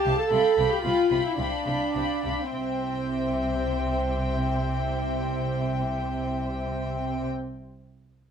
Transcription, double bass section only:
0.05 0.13 C2 soft
0.31 0.39 C2 soft
0.58 0.66 C2 soft
0.84 0.92 C2 soft
1.11 1.19 C2 soft
1.39 1.47 C2 soft
1.67 1.75 C2 soft
1.96 2.04 C2 soft
2.25 2.33 C2 soft
2.54 7.25 C2 soft

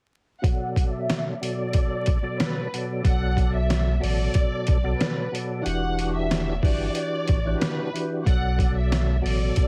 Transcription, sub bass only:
3.05 3.98 B1 loud
4.03 4.28 A1 medium
4.68 4.94 B1 loud
5.66 6.59 E1 loud
6.63 6.89 G1 loud
7.29 7.54 A1 loud
8.26 9.20 B1 loud
9.24 9.50 A1 medium

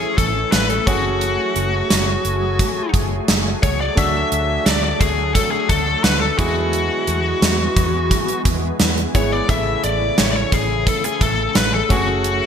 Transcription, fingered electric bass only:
0.18 0.43 A1 medium
0.53 0.77 A1 medium
0.87 1.37 F#1 medium
1.56 1.81 F#1 medium
1.91 2.16 F#1 medium
2.25 2.62 F#1 medium
2.94 3.19 F#1 medium
3.29 3.53 F#1 medium
3.63 3.88 C#2 medium
3.98 4.22 D2 medium
4.32 4.57 D2 medium
4.66 4.91 D2 medium
5.01 5.38 D2 medium
5.69 5.94 D2 medium
6.04 6.29 D2 medium
6.39 6.88 E2 medium
7.08 7.33 E2 medium
7.42 7.67 E2 medium
7.77 8.14 E2 medium
8.45 8.70 E2 medium
8.80 9.05 E2 medium
9.15 9.40 G#1 medium
9.49 9.74 A1 loud
9.84 10.09 A1 medium
10.18 10.43 A1 medium
10.52 10.90 A1 medium
11.21 11.46 A1 medium
11.56 11.81 A1 medium
11.90 12.40 F#1 medium

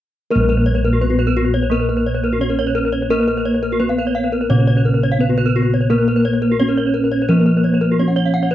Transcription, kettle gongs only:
0.31 2.36 A#4 soft
0.35 4.48 A#1 medium
1.01 1.09 B3 soft
2.41 2.49 B3 soft
3.10 5.16 A#4 medium
3.80 3.88 B3 soft
4.50 6.56 A#2 medium
5.20 5.28 B3 soft
5.90 7.95 A#4 medium
6.60 6.68 B3 soft
7.29 8.55 F3 medium
7.99 8.07 B3 soft

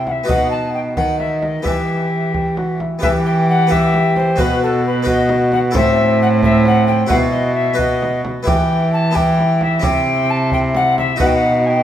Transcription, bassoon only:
0.00 0.31 E4 medium
0.29 0.96 D#4 medium
0.97 1.67 D#4 medium
1.65 2.29 G4 medium
2.34 2.55 G4 medium
2.58 2.82 F#4 medium
2.81 3.02 E4 medium
3.03 3.67 G4 medium
3.71 4.41 G4 medium
4.39 4.90 F#4 medium
5.07 5.74 F#4 medium
5.75 6.42 C4 medium
6.43 7.11 C4 medium
7.10 7.80 E4 medium
7.79 8.25 F#4 medium
8.47 9.12 E4 medium
9.16 9.83 E4 medium
9.84 10.51 E4 medium
10.52 11.22 E4 medium
11.21 11.83 D#4 medium

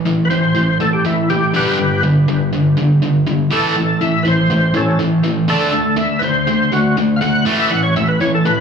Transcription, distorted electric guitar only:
0.05 0.28 A2 medium
0.05 0.28 E3 medium
0.31 0.53 A2 medium
0.31 0.53 E3 medium
0.55 0.77 A2 medium
0.55 0.77 E3 medium
0.80 1.02 A2 medium
0.80 1.02 E3 medium
1.05 1.27 A2 medium
1.05 1.27 E3 medium
1.30 1.52 A2 medium
1.30 1.52 E3 medium
1.54 1.77 G2 medium
1.54 1.77 D3 medium
1.54 1.77 G3 loud
1.78 2.01 G2 medium
1.78 2.01 D3 medium
2.03 2.25 G2 medium
2.03 2.26 D3 medium
2.28 2.50 G2 medium
2.28 2.50 D3 medium
2.53 2.75 G2 medium
2.53 2.75 D3 medium
2.78 3.00 G2 medium
2.78 3.00 D3 medium
3.03 3.25 G2 medium
3.03 3.25 D3 medium
3.27 3.49 G2 medium
3.27 3.49 D3 medium
3.50 3.74 A2 medium
3.50 3.75 E3 medium
3.50 3.75 A3 medium
3.76 3.98 A2 medium
3.76 3.98 E3 medium
4.01 4.23 A2 medium
4.01 4.23 E3 medium
4.25 4.47 A2 medium
4.25 4.47 E3 medium
4.50 4.72 A2 medium
4.50 4.73 E3 medium
4.74 4.97 A2 medium
4.74 4.97 E3 medium
4.99 5.22 A2 medium
4.99 5.22 E3 medium
5.23 5.46 A2 medium
5.23 5.46 E3 medium
5.48 5.71 D3 medium
5.48 5.72 A3 loud
5.48 5.72 D4 loud
5.73 5.95 D3 medium
5.73 5.96 A3 medium
5.97 6.20 D3 medium
5.97 6.20 A3 medium
6.22 6.45 D3 medium
6.22 6.45 A3 medium
6.47 6.70 D3 medium
6.47 6.70 A3 medium
6.72 6.94 D3 medium
6.72 6.94 A3 medium
6.97 7.19 D3 medium
6.97 7.19 A3 medium
7.21 7.44 D3 medium
7.21 7.44 A3 medium
7.45 7.69 A2 medium
7.45 7.69 E3 medium
7.45 7.69 A3 medium
7.71 7.93 A2 medium
7.71 7.93 E3 medium
7.96 8.18 A2 medium
7.96 8.18 E3 medium
8.21 8.43 A2 medium
8.21 8.43 E3 medium
8.46 8.60 A2 medium
8.46 8.60 E3 medium

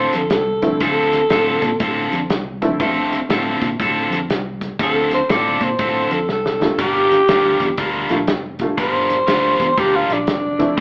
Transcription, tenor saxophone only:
0.00 0.17 C5 medium
0.16 0.32 A4 medium
0.32 0.80 A4 medium
0.83 1.79 A4 medium
4.83 5.12 A4 medium
5.14 5.33 C5 medium
5.32 5.65 D5 medium
5.63 6.14 C5 medium
6.12 6.29 A4 medium
6.32 6.79 A4 medium
6.81 7.77 G4 loud
8.80 9.81 C5 loud
9.79 9.97 G4 medium
9.96 10.14 F4 medium
10.13 10.80 D4 medium

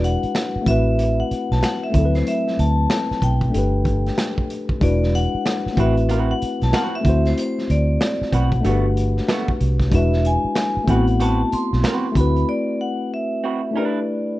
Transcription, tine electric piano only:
0.00 0.66 G#3 medium
0.00 0.66 D4 soft
0.00 0.65 E4 medium
0.00 0.67 F#4 medium
0.00 0.68 B4 medium
0.62 1.89 A3 medium
0.62 1.90 C4 medium
0.67 1.92 E4 medium
0.67 1.93 F#4 medium
0.71 1.94 B4 medium
1.90 3.48 A3 medium
1.90 3.50 C4 soft
1.94 3.52 F#3 medium
1.94 3.51 E4 medium
1.99 2.04 A4 soft
2.05 3.56 B4 medium
3.50 4.77 A3 medium
3.50 4.78 D4 soft
3.54 4.80 G4 soft
3.54 4.79 A4 soft
3.58 4.81 B4 medium
4.80 5.76 G#3 medium
4.80 5.77 D4 soft
4.80 5.76 E4 soft
4.80 5.78 F#4 medium
4.84 5.78 B4 medium
5.73 7.00 A3 medium
5.73 7.01 C4 medium
5.78 7.02 E4 medium
5.78 7.03 F#4 soft
5.82 7.05 B4 medium
7.01 8.59 A3 medium
7.01 8.60 C4 medium
7.05 8.61 E4 medium
7.05 8.63 F#4 soft
7.09 8.63 C5 medium
8.61 9.88 A3 medium
8.61 9.89 D4 medium
8.65 9.90 F#4 soft
8.65 9.91 G4 soft
8.69 9.92 B4 medium
9.91 10.87 G#3 medium
9.91 10.88 D4 medium
9.91 10.87 E4 medium
9.91 10.89 F#4 medium
9.95 10.89 B4 medium
10.84 12.11 A3 medium
10.84 12.12 C4 medium
10.89 12.13 E4 medium
10.89 12.14 F#4 medium
10.93 12.15 B3 medium
12.12 13.70 A3 medium
12.12 13.71 C4 medium
12.16 13.72 E4 medium
12.16 13.73 F#4 soft
12.20 13.74 B4 medium
13.71 14.40 A3 medium
13.71 14.40 D4 soft
13.75 14.40 E4 soft
13.75 14.40 G4 soft
13.79 14.40 B4 medium

